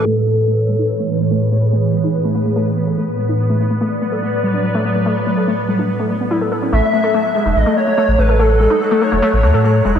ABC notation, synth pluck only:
X:1
M:4/4
L:1/16
Q:1/4=144
K:A
V:1 name="Synth pluck"
A, z A, A A, z G, ^D z A, A, A, A, z A, A | A, z G, ^D z A, A, A, A, z A, A A, z G, D | z A, A, A, A, z A, A A, z =G, D z A, A, A, | A, z A, A A, z =G, D z A, A, B, E A A C |
A, z A, A A, z G, ^D z A, A, A, A, z A, A | A, z G, ^D z A, A, A, A, z A, A A, z G, D |]